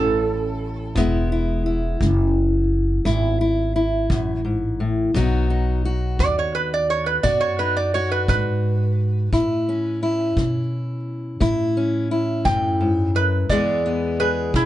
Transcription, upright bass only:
Already playing: A1
0.95 E1
2.01 F#1
3.05 G#1
4.10 A1
5.14 B1
6.19 D#2
7.24 F#2
8.28 G#2
9.33 A2
10.37 B2
11.41 A2
12.45 F#2
13.49 E2
14.54 B1

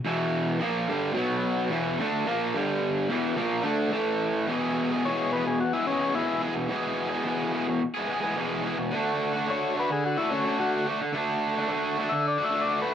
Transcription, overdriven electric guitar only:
0.05 E2 B2 E3
0.60 A#2 F3 A#3
0.88 G2 D3 G3
1.13 B2 F#3 B3
1.70 E2 B2 E3
1.99 D3 A3 D4
2.26 A#2 F3 A#3
2.54 G2 D3 G3
3.09 E2 B2 E3
3.36 A#2 F3 A#3
3.63 D3 A3 D4
3.92 A2 E3 A3
4.47 E2 B2 E3 G#3
4.51 B3 G#4
4.90 G#3 B3 G#4
4.96 E3
5.04 E2 B2 E3
5.08 G#3 B3 G#4
5.32 E3 G#3 B3
5.37 G#4
5.48 muted overdriven electric guitar stroke
5.73 G#3 B3 G#4
5.78 E3
5.87 E3 G#3 B3
5.92 G#4
6.01 G#3 B3 G#4
6.05 E3
6.15 E2 B2 E3 G#3 B3
6.19 G#4
6.41 E3 G#3 B3
6.47 G#4
6.56 muted overdriven electric guitar stroke
6.68 E2 B2 E3 G#3
6.73 B3 G#4
7.09 B3 G#4
7.13 E3 G#3
7.23 E2 B2 E3
7.27 G#3 B3 G#4
7.51 E3 G#3 B3
7.56 G#4
7.67 muted overdriven electric guitar stroke
7.94 B3 G#4
7.98 E3 G#3
8.07 E3 G#3
8.12 B3 G#4
8.21 G#3 B3 G#4
8.26 E3
8.35 E2 B2 E3 G#3 B3
8.40 G#4
8.62 E3 G#3
8.66 B3 G#4
8.78 muted overdriven electric guitar stroke
8.91 D3 A3
8.95 D4 F#4
9.34 D4 F#4
9.39 A3
9.47 D3 A3 D4
9.52 F#4
9.75 D3 A3 D4
9.81 F#4
9.90 muted overdriven electric guitar stroke
10.16 D4 F#4
10.21 A3
10.29 D3 A3 D4
10.35 F#4
10.45 D4 F#4
10.50 A3
10.58 D3 A3 D4
10.63 F#4
10.85 D3 A3 D4
10.89 F#4
11.01 muted overdriven electric guitar stroke
11.13 D3 A3 D4
11.17 F#4
11.55 D4 F#4
11.60 A3
11.68 D3 A3
11.72 D4 F#4
11.98 D3 A3 D4
12.02 F#4
12.12 muted overdriven electric guitar stroke
12.38 D4 F#4
12.43 A3
12.50 D3 A3
12.54 D4 F#4
12.65 D4 F#4
12.71 A3
12.79 D3 A3 D4
12.84 F#4

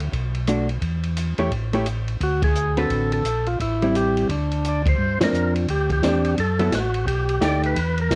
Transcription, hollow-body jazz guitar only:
0.48 A3 D4 F#4
1.39 A3 E4 G4 C#5
1.73 A3 E4 G4 C#5
2.77 D3 C4 F#4 B4
3.82 G3 C4 E4
5.21 F3 C4 D4
6.04 C4 D4
6.59 F#3 B3 E4 A4
7.41 A3 D#4 G4

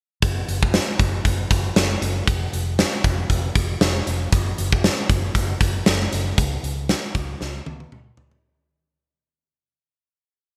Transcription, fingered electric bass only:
0.23 F#1
0.48 F#1
1.00 F#1
1.25 F#1
1.51 F#1
1.76 F#1
2.02 F#1
2.27 F1
2.53 F1
3.04 F1
3.30 F1
3.56 F1
3.81 F1
4.07 F1
4.33 F#1
4.58 F#1
5.10 F#1
5.35 F#1
5.61 F#1
5.87 F#1
6.13 F#1
6.38 C#2
6.63 C#2
7.15 C#2
7.41 C#2
7.66 C#2
7.92 C#2
8.18 C#2

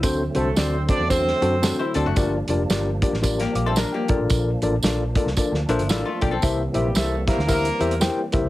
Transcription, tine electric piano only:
0.03 D3 C4 D4 F#4 A4 C5
0.35 C4 D4 F#4 A4 C5
0.57 C4 D4 F#4 A4 D5
0.89 C4 D4 F#4 A4 C5
1.10 C4 D4 F#4 A4 C5
1.42 C4 D4 F#4 A4 C5
1.62 C4 D4 F#4 A4 C5
1.95 C4 D4 F#4 A4 D5
2.16 G2 D4 F4 G4 A#4 D5
2.49 D4 F4 G4 A#4 D5
2.70 D4 F4 G4 A#4 D5
3.02 D4 F4 G4 A#4 D5
3.22 D4 F4 G4 A#4 D5
3.56 F5 D6
3.66 E5 C6
3.77 D5 A#5
3.93 A#4 G5
4.09 A#2 D4 F4 A4 A#4 D5
4.62 D4 F4 A4 A#4 D5
4.84 D4 F4 A4 A#4 D5
5.16 D4 F4 A4 A#4 D5
5.37 D4 F4 A4 A#4 D5
5.69 D4 F4 A4 A#4 C5 E5
5.90 D4 F4 A4 A#4 D5 F5
6.21 D4 F4 A4 A#4 D5 G5
6.43 C3 E4 G4 A#4 C5 E5
6.74 E4 G4 A#4 C5 E5
6.96 E4 G4 A#4 C5 E5
7.27 E4 G4 A#4 C5 E5
7.47 E4 G4 A#4 C5 E5
7.80 E4 G4 A#4 C5 E5
8.00 E4 G4 A#4 C5 G5
8.33 E4 G4 A#4 C5 E5

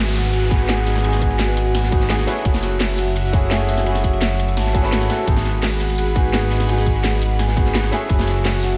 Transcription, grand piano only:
Already playing: G#3 B3 D#4 F#4 G#4
0.50 G#3 B3 D#4 F#4 G#4
0.68 G#3 B3 D#4 F#4 G#4
1.02 G#3 B3 D#4
1.06 F#4 G#4
1.91 G#3 B3 D#4 F#4 G#4
2.09 G#3 B3 D#4 F#4 G#4
2.26 A3 C#4 E4 F#4 G#4
2.42 A3 C#4 E4
2.47 F#4 G#4
3.32 A3 C#4 E4 F#4 G#4
3.50 A3 C#4 E4 F#4 G#4
3.83 A3 C#4 E4
3.88 F#4 G#4
4.73 A3 C#4 E4 F#4 G#4
4.82 A3 C#4 E4 F#4 B4
5.09 A3 C#4 E4 F#4 A4
5.25 G#3 B3 D#4
5.29 F#4 G#4
6.14 G#3 B3 D#4 F#4 G#4
6.32 G#3 B3 D#4 F#4 G#4
6.66 G#3 B3 D#4
6.70 F#4 G#4
7.56 G#3 B3 D#4 F#4 G#4
7.73 G#3 B3 D#4 F#4 G#4
7.91 A3 C#4 E4 F#4 G#4
8.07 A3 C#4 E4
8.11 F#4 G#4

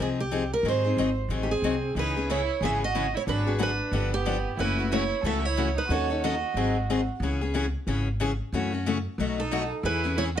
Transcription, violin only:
1.42 A3
1.51 C4
1.98 D#4
2.29 E4
2.62 G#4
2.82 F#4
3.14 E4
3.27 D4
3.61 D4
4.14 B3
4.59 E4
4.90 E4
5.24 A4
5.43 E4
5.77 D#4
5.89 F#4
6.24 F#4
9.38 D#4
9.84 E4
10.16 E4
10.35 F#4

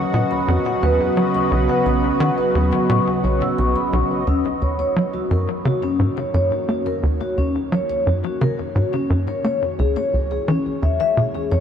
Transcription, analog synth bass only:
0.14 A#2
0.48 F2
0.83 D#2
1.17 F#3
1.51 B1
1.86 B1
2.20 D#3
2.55 D#2
2.89 A#2
3.24 B1
3.58 B1
3.93 B1
4.27 D#2
4.62 D#2
4.96 F#3
5.31 F#2
5.65 C#3
5.99 G#2
6.34 F#2
6.69 A#3
7.03 D#2
7.37 D#2
7.72 F#3
8.07 F#2
8.41 C#3
8.75 G#2
9.10 F#2
9.44 A#3
9.79 C#2
10.13 C#2
10.48 E3
10.82 E2
11.17 B2
11.52 F#2

